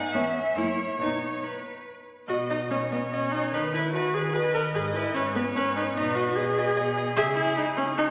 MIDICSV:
0, 0, Header, 1, 5, 480
1, 0, Start_track
1, 0, Key_signature, 5, "major"
1, 0, Tempo, 427350
1, 1120, Time_signature, 3, 2, 24, 8
1, 3040, Tempo, 405680
1, 9427, End_track
2, 0, Start_track
2, 0, Title_t, "Violin"
2, 0, Program_c, 0, 40
2, 0, Note_on_c, 0, 78, 65
2, 142, Note_on_c, 0, 76, 56
2, 159, Note_off_c, 0, 78, 0
2, 622, Note_on_c, 0, 73, 64
2, 639, Note_off_c, 0, 76, 0
2, 1111, Note_off_c, 0, 73, 0
2, 1118, Note_on_c, 0, 73, 57
2, 1608, Note_on_c, 0, 71, 43
2, 1624, Note_off_c, 0, 73, 0
2, 2091, Note_off_c, 0, 71, 0
2, 2566, Note_on_c, 0, 75, 61
2, 3004, Note_off_c, 0, 75, 0
2, 3042, Note_on_c, 0, 73, 50
2, 3997, Note_off_c, 0, 73, 0
2, 4007, Note_on_c, 0, 71, 57
2, 4487, Note_off_c, 0, 71, 0
2, 4498, Note_on_c, 0, 71, 55
2, 4969, Note_off_c, 0, 71, 0
2, 4992, Note_on_c, 0, 75, 68
2, 5928, Note_on_c, 0, 73, 55
2, 5946, Note_off_c, 0, 75, 0
2, 6892, Note_on_c, 0, 71, 64
2, 6910, Note_off_c, 0, 73, 0
2, 7848, Note_on_c, 0, 68, 80
2, 7866, Note_off_c, 0, 71, 0
2, 9264, Note_off_c, 0, 68, 0
2, 9271, Note_on_c, 0, 73, 74
2, 9427, Note_off_c, 0, 73, 0
2, 9427, End_track
3, 0, Start_track
3, 0, Title_t, "Violin"
3, 0, Program_c, 1, 40
3, 156, Note_on_c, 1, 61, 46
3, 375, Note_off_c, 1, 61, 0
3, 634, Note_on_c, 1, 64, 44
3, 859, Note_off_c, 1, 64, 0
3, 1136, Note_on_c, 1, 63, 46
3, 1359, Note_off_c, 1, 63, 0
3, 2576, Note_on_c, 1, 75, 48
3, 2666, Note_off_c, 1, 75, 0
3, 2809, Note_on_c, 1, 75, 47
3, 2899, Note_off_c, 1, 75, 0
3, 3047, Note_on_c, 1, 75, 42
3, 3142, Note_off_c, 1, 75, 0
3, 3294, Note_on_c, 1, 75, 47
3, 3388, Note_off_c, 1, 75, 0
3, 3539, Note_on_c, 1, 75, 44
3, 3634, Note_off_c, 1, 75, 0
3, 3798, Note_on_c, 1, 75, 44
3, 3891, Note_off_c, 1, 75, 0
3, 4020, Note_on_c, 1, 71, 53
3, 4114, Note_off_c, 1, 71, 0
3, 4271, Note_on_c, 1, 71, 46
3, 4366, Note_off_c, 1, 71, 0
3, 4516, Note_on_c, 1, 71, 48
3, 4609, Note_off_c, 1, 71, 0
3, 4760, Note_on_c, 1, 71, 46
3, 4852, Note_off_c, 1, 71, 0
3, 4985, Note_on_c, 1, 71, 47
3, 5079, Note_off_c, 1, 71, 0
3, 5228, Note_on_c, 1, 71, 49
3, 5320, Note_off_c, 1, 71, 0
3, 5458, Note_on_c, 1, 71, 60
3, 5551, Note_off_c, 1, 71, 0
3, 5696, Note_on_c, 1, 71, 50
3, 5791, Note_off_c, 1, 71, 0
3, 5936, Note_on_c, 1, 71, 51
3, 6030, Note_off_c, 1, 71, 0
3, 6178, Note_on_c, 1, 71, 51
3, 6273, Note_off_c, 1, 71, 0
3, 6419, Note_on_c, 1, 71, 55
3, 6514, Note_off_c, 1, 71, 0
3, 6657, Note_on_c, 1, 71, 51
3, 6752, Note_off_c, 1, 71, 0
3, 6903, Note_on_c, 1, 75, 67
3, 6998, Note_off_c, 1, 75, 0
3, 7134, Note_on_c, 1, 75, 49
3, 7229, Note_off_c, 1, 75, 0
3, 7382, Note_on_c, 1, 75, 58
3, 7476, Note_off_c, 1, 75, 0
3, 7620, Note_on_c, 1, 75, 64
3, 7714, Note_off_c, 1, 75, 0
3, 7841, Note_on_c, 1, 75, 55
3, 7936, Note_off_c, 1, 75, 0
3, 8083, Note_on_c, 1, 75, 53
3, 8178, Note_off_c, 1, 75, 0
3, 8311, Note_on_c, 1, 76, 79
3, 8542, Note_off_c, 1, 76, 0
3, 9427, End_track
4, 0, Start_track
4, 0, Title_t, "Viola"
4, 0, Program_c, 2, 41
4, 151, Note_on_c, 2, 59, 50
4, 372, Note_off_c, 2, 59, 0
4, 628, Note_on_c, 2, 58, 43
4, 856, Note_off_c, 2, 58, 0
4, 1113, Note_on_c, 2, 59, 40
4, 1346, Note_off_c, 2, 59, 0
4, 2564, Note_on_c, 2, 66, 71
4, 2654, Note_off_c, 2, 66, 0
4, 2811, Note_on_c, 2, 63, 64
4, 2901, Note_off_c, 2, 63, 0
4, 3040, Note_on_c, 2, 61, 64
4, 3135, Note_off_c, 2, 61, 0
4, 3285, Note_on_c, 2, 59, 54
4, 3379, Note_off_c, 2, 59, 0
4, 3524, Note_on_c, 2, 61, 65
4, 3760, Note_on_c, 2, 63, 66
4, 3778, Note_off_c, 2, 61, 0
4, 4005, Note_off_c, 2, 63, 0
4, 4012, Note_on_c, 2, 63, 77
4, 4107, Note_off_c, 2, 63, 0
4, 4256, Note_on_c, 2, 64, 69
4, 4495, Note_off_c, 2, 64, 0
4, 4501, Note_on_c, 2, 66, 79
4, 4740, Note_on_c, 2, 68, 68
4, 4758, Note_off_c, 2, 66, 0
4, 4970, Note_on_c, 2, 71, 82
4, 4988, Note_off_c, 2, 68, 0
4, 5204, Note_off_c, 2, 71, 0
4, 5211, Note_on_c, 2, 70, 77
4, 5306, Note_off_c, 2, 70, 0
4, 5450, Note_on_c, 2, 68, 76
4, 5544, Note_off_c, 2, 68, 0
4, 5682, Note_on_c, 2, 64, 73
4, 5916, Note_off_c, 2, 64, 0
4, 5924, Note_on_c, 2, 61, 75
4, 6018, Note_off_c, 2, 61, 0
4, 6167, Note_on_c, 2, 59, 69
4, 6262, Note_off_c, 2, 59, 0
4, 6412, Note_on_c, 2, 61, 75
4, 6645, Note_off_c, 2, 61, 0
4, 6652, Note_on_c, 2, 63, 72
4, 6747, Note_off_c, 2, 63, 0
4, 6893, Note_on_c, 2, 63, 80
4, 7120, Note_on_c, 2, 66, 84
4, 7138, Note_off_c, 2, 63, 0
4, 7360, Note_on_c, 2, 68, 84
4, 7378, Note_off_c, 2, 66, 0
4, 8081, Note_off_c, 2, 68, 0
4, 8317, Note_on_c, 2, 68, 107
4, 8411, Note_off_c, 2, 68, 0
4, 8552, Note_on_c, 2, 64, 83
4, 8786, Note_off_c, 2, 64, 0
4, 8794, Note_on_c, 2, 63, 86
4, 8888, Note_off_c, 2, 63, 0
4, 9030, Note_on_c, 2, 61, 86
4, 9125, Note_off_c, 2, 61, 0
4, 9280, Note_on_c, 2, 63, 99
4, 9375, Note_off_c, 2, 63, 0
4, 9427, End_track
5, 0, Start_track
5, 0, Title_t, "Cello"
5, 0, Program_c, 3, 42
5, 151, Note_on_c, 3, 40, 51
5, 529, Note_off_c, 3, 40, 0
5, 630, Note_on_c, 3, 42, 45
5, 1015, Note_off_c, 3, 42, 0
5, 1108, Note_on_c, 3, 47, 42
5, 1505, Note_off_c, 3, 47, 0
5, 2573, Note_on_c, 3, 47, 53
5, 2985, Note_off_c, 3, 47, 0
5, 3038, Note_on_c, 3, 47, 46
5, 3468, Note_off_c, 3, 47, 0
5, 3525, Note_on_c, 3, 47, 54
5, 3957, Note_off_c, 3, 47, 0
5, 4009, Note_on_c, 3, 51, 57
5, 4441, Note_off_c, 3, 51, 0
5, 4498, Note_on_c, 3, 51, 50
5, 4922, Note_off_c, 3, 51, 0
5, 4987, Note_on_c, 3, 51, 56
5, 5400, Note_off_c, 3, 51, 0
5, 5458, Note_on_c, 3, 44, 61
5, 5875, Note_off_c, 3, 44, 0
5, 5922, Note_on_c, 3, 44, 57
5, 6353, Note_off_c, 3, 44, 0
5, 6409, Note_on_c, 3, 44, 54
5, 6837, Note_off_c, 3, 44, 0
5, 6895, Note_on_c, 3, 47, 60
5, 7318, Note_off_c, 3, 47, 0
5, 7369, Note_on_c, 3, 47, 59
5, 7792, Note_off_c, 3, 47, 0
5, 7839, Note_on_c, 3, 47, 59
5, 8265, Note_off_c, 3, 47, 0
5, 8318, Note_on_c, 3, 49, 66
5, 8722, Note_off_c, 3, 49, 0
5, 9427, End_track
0, 0, End_of_file